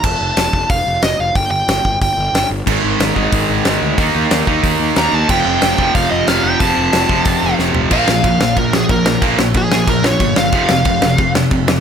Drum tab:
CC |x-------|--------|x-------|--------|
HH |--o-o-o-|o-o-o-o-|--o-o-o-|o-o-o-o-|
SD |--o---o-|--o---o-|--o---o-|--o---o-|
FT |--------|--------|--------|--------|
BD |o--oo---|o--oo---|o--oo---|o--oo---|

CC |x-------|--------|x-x-x-x-|x-x-x-x-|
HH |--o-o-o-|o-o-o---|--------|--------|
SD |--o---o-|--o---o-|-o-o-o-o|-o-o-o-o|
FT |--------|-------o|--------|--------|
BD |o--oo---|o--oo---|o-o-o-o-|o-o-o-o-|

CC |x-x-x-x-|
HH |--------|
SD |-o-o-o-o|
FT |--------|
BD |o-o-o-o-|